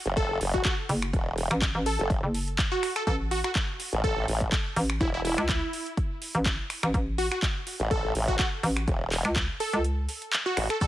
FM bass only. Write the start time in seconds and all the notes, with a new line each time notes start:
0.89 F#1
1.51 A1
1.75 A1
2.23 F#1
3.07 A1
4.76 A1
5.38 C#2
6.35 A1
6.83 A1
6.94 A1
8.63 A1
9.25 C#2
9.73 C#2
10.81 F#1